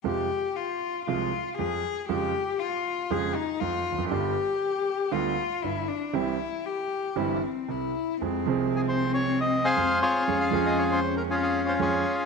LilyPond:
<<
  \new Staff \with { instrumentName = "Bandoneon" } { \time 4/4 \key f \minor \tempo 4 = 118 << { r1 | r1 | r1 | r1 |
r4 aes'16 c''8 des''8 ees''8 f''8. des''8~ | des''16 f''8 ees''16 des''16 c''8 bes'16 aes'16 aes'8 c''16 des''8. r16 | } \\ { r1 | r1 | r1 | r1 |
r2 r8. <aes' c''>8. <f' aes'>8~ | <f' aes'>4. r8 <des' f'>4 <f' aes'>4 | } >> }
  \new Staff \with { instrumentName = "Cello" } { \time 4/4 \key f \minor g'4 f'4 f'4 aes'4 | g'4 f'4 aes'8 ees'8 f'4 | g'2 f'4 e'8 d'8 | e'4 g'4 e'8 c'8 e'4 |
c'1 | des'2 des'2 | }
  \new Staff \with { instrumentName = "Grand piano" } { \clef bass \time 4/4 \key f \minor <f, c f aes f'>8 r4. <c, c f aes f'>8 r8 <f, f>8 r8 | <f, des f aes f'>8 r4. <f, des f aes f'>8 r8 <f, f>8 r32 e,32 f,32 ges,32 | <g,, g, d g b f'>8 r4. <d, d g b f'>8 r8 <g,, g,>8 r8 | <c, c e g c' g'>8 r4. <g,, g, e g c' g'>8 r8 <c, c>8 r8 |
<f, f aes c' aes'>8 <c, c f aes c' aes'>2~ <c, c f aes c' aes'>8 <f, f aes c' aes'>8 r8 | <f, f aes des' aes'>8 <f, f aes des' aes'>2~ <f, f aes des' aes'>8 <f, f aes des' aes'>8 r8 | }
>>